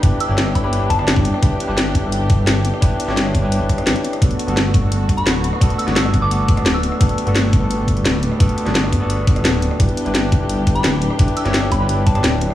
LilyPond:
<<
  \new Staff \with { instrumentName = "Synth bell" } { \time 4/4 \key g \major \tempo 4 = 172 r8 e'''4 b''16 b''16 r8 a''16 a''16 r4 | r1 | r1 | r2 r8. b''8 r8. |
r8 e'''4~ e'''16 d'''8 r4 e'''8.~ | e'''16 r2. r8. | r1 | r2 r8. b''8 r8. |
r8 e'''4 b''16 b''16 r8 a''16 a''16 r4 | }
  \new Staff \with { instrumentName = "Tine electric piano" } { \time 4/4 \key g \major <d' e' g' b'>8. <d' e' g' cis''>4 <d' e' g' b'>4 <d' e' g' d''>16 r4 | <d' e' g' b'>8. <d' e' g' b'>4 <d' e' g' a'>2~ <d' e' g' a'>16 | <d' e' g' b'>8. <d' e' g' cis''>4 <d' e' g' b'>4 r4 r16 | <b d' fis' a'>8. <b d' fis' a'>4 <b d' fis' a'>2~ <b d' fis' a'>16 |
<b d' fis' a'>8. <b d' fis' b'>4 <b d' fis' a'>4 <b d' fis' d''>16 r4 | <b d' fis' a'>8. <b d' fis' a'>4 <b d' fis' a'>2~ <b d' fis' a'>16 | <b d' fis' a'>8. <b d' fis' b'>4 <b d' fis' a'>4 r4 r16 | <d' e' g' b'>8. <d' e' g' b'>4 <d' e' g' a'>2~ <d' e' g' a'>16 |
<d' e' g' b'>8. <d' e' g' cis''>4 <d' e' g' b'>4 <d' e' g' d''>16 r4 | }
  \new Staff \with { instrumentName = "String section" } { \time 4/4 \key g \major << { g'1~ | g'1~ | g'1 | fis'1~ |
fis'1 | g1~ | g1 | g'1~ |
g'1 | } \\ { <b d'>1~ | <b d'>1~ | <b d'>1 | <a b>1~ |
<a b>1~ | <a b>1~ | <a b>1 | d'1~ |
d'1 | } >> }
  \new Staff \with { instrumentName = "Detuned saw bass" } { \clef bass \time 4/4 \key g \major g,,16 r8 g,,8. g,,8. g,,8. g,,8. r16 | g,,16 r8 g,,8. g,,8. g,,8. g,,8. r16 | g,,16 r8 g,,8. g,,8. g,,8. g,,16 r8. | g,,16 r8 g,,8. g,,8. g,,8. d,,8. r16 |
g,,16 r8 g,,8. g,,8. g,,8. d,,8. r16 | g,,16 r8 g,,8. g,,8. g,,8. d,,8. r16 | g,,16 r8 g,,8. g,,8. g,,8. d,,8. r16 | g,,16 r8 g,,8. g,,8. g,,8. d,,8. r16 |
g,,16 r8 g,,8. g,,8. g,,8. d,,8. r16 | }
  \new DrumStaff \with { instrumentName = "Drums" } \drummode { \time 4/4 <hh bd>8 hh8 <hh sn>16 ss16 <hho bd>8 hh8 <hh bd>16 ss16 <hh sn>16 bd16 hh16 ss16 | <hh bd>8 hh8 <hh sn>8 <hh bd>8 hh8 <hh bd>8 <hh sn>8 hh16 ss16 | <hh bd>8 hh16 sn16 <hh sn>16 ss16 <hho bd>8 hh8 <hh bd>16 <hh ss>16 <hh sn>16 hh16 hh16 <hh ss>16 | <hh bd>16 hh16 hh16 hh16 <hh sn>8 <hh bd>8 hh8 <hh bd>16 hh16 <hh sn>8 hh16 ss16 |
<hh bd>16 hh16 hh16 <hh sn>16 <hh sn>16 ss16 <hho bd>8 hh8 <hh bd>16 <hh ss>16 <hh sn>8 hh16 ss16 | <hh bd>16 hh16 hh16 hh16 <hh sn>8 <hh bd>8 hh8 <hh bd>16 hh16 <hh sn>8 hh16 ss16 | <hh bd>16 hh16 hh16 <hh sn>16 <hh sn>16 ss16 <hho bd>8 hh8 <hh bd>16 <hh ss>16 <hh sn>8 hh16 ss16 | <hh bd>16 hh16 hh16 hh16 <hh sn>8 <hh bd>8 hh8 <hh bd>16 hh16 <hh sn>8 hh16 ss16 |
<hh bd>16 hh16 hh16 <hh sn>16 <hh sn>16 ss16 <hho bd>8 hh8 <hh bd>16 <hh ss>16 <hh sn>8 hh16 ss16 | }
>>